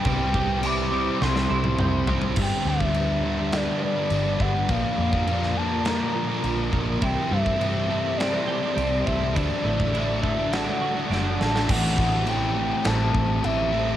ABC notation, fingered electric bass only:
X:1
M:4/4
L:1/16
Q:1/4=103
K:G
V:1 name="Fingered electric bass" clef=bass
C,,8 C,,2 C,,2 C,,4 | G,,, z D,,8 z2 G,,,2 G,,,2 | _B,,, z =F,,8 z2 B,,,2 B,,,2 | C,, z G,,8 z2 C,,2 C,,2 |
D,, z A,,,8 z2 F,,,2 A,,,2 | A,,,8 A,,,2 A,,,2 A,,,4 |]